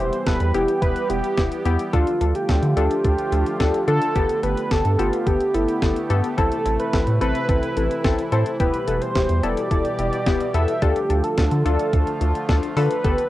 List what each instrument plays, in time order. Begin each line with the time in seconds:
Already playing: analog synth pad E3 G3 B3 G4
0.00 analog synth bass E1, synth keys B3 E4 G4, analog synth lead C5
0.13 closed hi-hat
0.26 analog synth bass E1, synth keys B3 E4 A4, analog synth lead B4, kick, snare, closed hi-hat
0.40 analog synth bass E2, closed hi-hat
0.54 analog synth bass E1, synth keys B3 E4 G4, analog synth lead G4, closed hi-hat
0.68 closed hi-hat
0.82 analog synth bass E1, synth keys B3 E4 G4, analog synth lead B4, kick, closed hi-hat
0.96 closed hi-hat
1.10 analog synth bass E1, synth keys B3 E4 G4, analog synth lead G4, closed hi-hat
1.24 closed hi-hat
1.38 analog synth bass E1, synth keys B3 E4 G4, kick, snare, closed hi-hat
1.52 closed hi-hat
1.65 analog synth bass E2, synth keys B3 E4 G4, closed hi-hat
1.79 closed hi-hat
1.93 analog synth bass D2, analog synth pad D3 F3 A3 F4, synth keys D4 F4 A4, analog synth lead F4, kick, closed hi-hat
2.07 closed hi-hat
2.21 analog synth bass D2, synth keys D4 F4 A4, closed hi-hat
2.35 analog synth lead G4, closed hi-hat
2.49 analog synth bass D2, synth keys D4 F4 A4, kick, snare, closed hi-hat
2.63 analog synth bass D3, closed hi-hat
2.77 analog synth bass D2, synth keys D4 F4 A4, analog synth lead G4, closed hi-hat
2.91 closed hi-hat
3.04 analog synth bass D2, synth keys D4 F4 A4, kick, closed hi-hat
3.18 closed hi-hat
3.32 analog synth bass D2, synth keys D4 F4 A4, closed hi-hat
3.46 closed hi-hat
3.60 analog synth bass D2, synth keys D4 F4 A4, kick, snare, closed hi-hat
3.74 closed hi-hat
3.88 analog synth bass D3, synth keys D4 F4 A4, analog synth lead A4, closed hi-hat
4.02 closed hi-hat
4.15 analog synth bass G1, analog synth pad A3 B3 G4, synth keys B3 G4 A4, kick, closed hi-hat
4.29 closed hi-hat
4.43 analog synth bass G1, synth keys B3 G4 A4, analog synth lead B4, closed hi-hat
4.57 closed hi-hat
4.71 analog synth bass G1, synth keys B3 G4 A4, analog synth lead A4, kick, snare, closed hi-hat
4.85 analog synth bass G2, closed hi-hat
4.99 analog synth bass G1, synth keys B3 G4 A4, analog synth lead F4, closed hi-hat
5.13 closed hi-hat
5.27 analog synth bass G1, synth keys B3 G4 A4, analog synth lead G4, kick, closed hi-hat
5.41 closed hi-hat
5.54 analog synth bass G1, synth keys B3 G4 A4, analog synth lead E4, closed hi-hat
5.69 closed hi-hat
5.82 analog synth bass G1, synth keys B3 G4 A4, kick, snare, closed hi-hat
5.96 closed hi-hat
6.10 analog synth bass G2, synth keys B3 G4 A4, closed hi-hat
6.24 closed hi-hat
6.38 analog synth bass A1, analog synth pad C3 E3 E4, synth keys C4 E4 A4, analog synth lead A4, kick, closed hi-hat
6.52 closed hi-hat
6.65 analog synth bass A1, synth keys C4 E4 A4, closed hi-hat
6.80 analog synth lead B4, closed hi-hat
6.93 analog synth bass A1, synth keys C4 E4 A4, kick, snare, closed hi-hat
7.07 analog synth bass A2, closed hi-hat
7.21 analog synth bass A1, synth keys C4 E4 A4, analog synth lead B4, closed hi-hat
7.35 closed hi-hat
7.49 analog synth bass A1, synth keys C4 E4 A4, kick, closed hi-hat
7.63 closed hi-hat
7.77 analog synth bass A1, synth keys C4 E4 A4, closed hi-hat
7.91 closed hi-hat
8.04 analog synth bass A1, synth keys C4 E4 A4, kick, snare, closed hi-hat
8.18 closed hi-hat
8.32 analog synth bass A2, synth keys C4 E4 A4, analog synth lead C5, closed hi-hat
8.46 closed hi-hat
8.60 analog synth bass E1, analog synth pad B2 G3 G4, synth keys B3 E4 G4, analog synth lead B4, kick, closed hi-hat
8.74 closed hi-hat
8.88 analog synth bass E1, synth keys B3 E4 A4, closed hi-hat
9.02 analog synth lead C5, closed hi-hat
9.15 analog synth bass E1, synth keys B3 E4 G4, kick, snare, closed hi-hat
9.29 analog synth bass E2, closed hi-hat
9.43 analog synth bass E1, synth keys B3 E4 A4, analog synth lead D5, closed hi-hat
9.57 closed hi-hat
9.71 analog synth bass E1, synth keys B3 E4 A4, kick, closed hi-hat
9.85 closed hi-hat
9.99 analog synth bass E1, synth keys B3 E4 G4, closed hi-hat
10.13 closed hi-hat
10.26 analog synth bass E1, synth keys B3 E4 G4, kick, snare, closed hi-hat
10.41 closed hi-hat
10.54 analog synth bass E2, synth keys B3 E4 A4, analog synth lead E5, closed hi-hat
10.68 closed hi-hat
10.82 analog synth bass D2, analog synth pad D3 F3 A3 F4, synth keys D4 F4 A4, analog synth lead G4, kick, closed hi-hat
10.96 closed hi-hat
11.10 analog synth bass D2, synth keys D4 F4 A4, closed hi-hat
11.24 analog synth lead A4, closed hi-hat
11.38 analog synth bass D2, synth keys D4 F4 A4, kick, snare, closed hi-hat
11.51 analog synth bass D3, closed hi-hat
11.65 analog synth bass D2, synth keys D4 F4 A4, analog synth lead A4, closed hi-hat
11.79 closed hi-hat
11.93 analog synth bass D2, synth keys D4 F4 A4, kick, closed hi-hat
12.07 closed hi-hat
12.21 analog synth bass D2, synth keys D4 F4 A4, closed hi-hat
12.35 closed hi-hat
12.49 analog synth bass D2, synth keys D4 F4 A4, kick, snare, closed hi-hat
12.63 closed hi-hat
12.77 analog synth bass D3, synth keys D4 F4 A4, analog synth lead B4, open hi-hat
12.90 closed hi-hat
13.04 analog synth bass G1, analog synth pad D3 A3 B3 G4, synth keys B3 G4 A4, kick, closed hi-hat
13.18 closed hi-hat